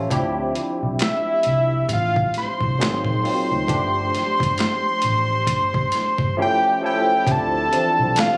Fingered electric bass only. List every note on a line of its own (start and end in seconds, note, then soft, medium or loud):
0.11 0.51 D2 medium
0.83 0.99 B1 medium
1.46 1.86 C2 medium
1.90 2.30 A1 medium
2.62 2.78 C2 medium
2.81 3.03 G#1 medium
3.05 3.22 A#1 medium
3.51 3.67 D2 medium
3.69 4.09 G1 medium
4.41 4.57 G1 medium
5.04 5.48 A1 medium
5.48 5.88 G1 medium
6.19 6.36 G1 medium
7.27 7.67 D2 loud
7.99 8.15 B1 medium